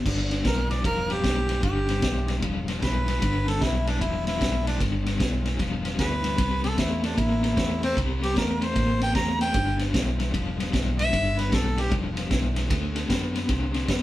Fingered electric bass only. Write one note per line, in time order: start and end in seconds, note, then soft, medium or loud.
0.06 0.42 G1 medium
0.45 0.81 B1 medium
0.84 1.20 E1 medium
1.24 1.60 B1 medium
1.63 1.99 G1 loud
2.02 2.39 B1 medium
2.42 2.79 E1 medium
2.82 3.18 B1 medium
3.22 3.58 G1 loud
3.61 3.98 B1 medium
4.01 4.37 E1 medium
4.41 4.77 B1 medium
4.80 5.16 G1 loud
5.20 5.56 B1 medium
5.59 5.96 E1 medium
5.99 6.35 D2 medium
6.38 6.75 C2 medium
6.78 7.14 E2 medium
7.18 7.54 A1 medium
7.57 7.93 E2 medium
7.97 8.33 C2 medium
8.36 8.72 E2 medium
8.75 9.12 A1 medium
9.15 9.51 E2 medium
9.54 9.91 G1 loud
9.94 10.30 B1 medium
10.34 10.70 E1 medium
10.73 11.10 B1 medium
11.13 11.49 G1 loud
11.52 11.89 B1 medium
11.92 12.28 E1 medium
12.31 12.67 B1 medium
12.70 13.07 D2 medium
13.10 13.46 F#2 medium
13.49 13.86 C2 medium
13.88 14.02 F#2 medium